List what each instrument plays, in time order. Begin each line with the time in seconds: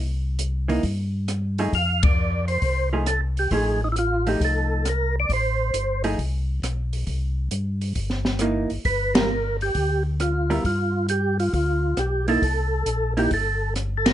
Already playing: tonewheel organ C2
0.39 closed hi-hat
0.68 hollow-body jazz guitar E3 A#3 D#4, open hi-hat
0.83 tonewheel organ G2, kick, open hi-hat
1.28 cross-stick, closed hi-hat
1.58 hollow-body jazz guitar F3 A3 D#4 G#4, open hi-hat
1.73 tonewheel organ F2 F5, kick, open hi-hat
2.03 tonewheel organ D5, kick, ride
2.48 tonewheel organ C5, open hi-hat
2.62 tonewheel organ C2, kick, open hi-hat
2.93 hollow-body jazz guitar F3 A3 D#4 G#4
3.06 tonewheel organ A4, cross-stick, closed hi-hat
3.37 tonewheel organ G4, open hi-hat
3.51 tonewheel organ A1 G#4, hollow-body jazz guitar F3 A3 D#4 G#4, kick, open hi-hat
3.84 tonewheel organ D#4
3.92 tonewheel organ E4, closed hi-hat
3.99 tonewheel organ F4
4.27 hollow-body jazz guitar F3 A3 D#4, tonewheel organ G4, open hi-hat
4.40 tonewheel organ C2, kick, open hi-hat
4.45 tonewheel organ A4
4.85 cross-stick, closed hi-hat
4.89 tonewheel organ A#4
5.20 tonewheel organ D5
5.29 tonewheel organ A1, kick, open hi-hat
5.33 tonewheel organ C5
5.74 tonewheel organ G1, closed hi-hat
6.04 hollow-body jazz guitar F3 A3 D#4 G#4, open hi-hat
6.18 tonewheel organ C2, kick, open hi-hat
6.62 tonewheel organ B1, cross-stick, closed hi-hat
6.93 open hi-hat
7.07 tonewheel organ C2, kick, open hi-hat
7.51 tonewheel organ G2, closed hi-hat
7.81 open hi-hat
7.95 tonewheel organ G1, kick, open hi-hat
8.10 snare
8.25 snare
8.39 hollow-body jazz guitar E3 A#3 D#4, cross-stick, closed hi-hat
8.70 tonewheel organ G1, open hi-hat
8.85 tonewheel organ G1 B4, kick, open hi-hat
9.14 hollow-body jazz guitar G3 B3 F4 A#4, tonewheel organ A#4, snare, ride
9.61 tonewheel organ G4, open hi-hat
9.75 tonewheel organ D2, kick, open hi-hat
10.20 tonewheel organ F4, cross-stick, closed hi-hat
10.50 hollow-body jazz guitar G3 B3 F4 A#4, tonewheel organ E4, open hi-hat
10.64 tonewheel organ G2 F4, kick, open hi-hat
11.09 tonewheel organ G4, closed hi-hat
11.40 tonewheel organ F4, open hi-hat
11.53 tonewheel organ D2 F4, kick, open hi-hat
11.97 tonewheel organ B1 G4, cross-stick, closed hi-hat
12.28 hollow-body jazz guitar A#3 D#4 E4, tonewheel organ A4, open hi-hat
12.42 tonewheel organ C2, kick, open hi-hat
12.86 tonewheel organ A#1, closed hi-hat
13.17 hollow-body jazz guitar A#3 D#4 E4, tonewheel organ G4, open hi-hat
13.31 tonewheel organ G1 A4, kick, open hi-hat
13.76 cross-stick, closed hi-hat
13.98 tonewheel organ A4
14.06 tonewheel organ A#4, snare, ride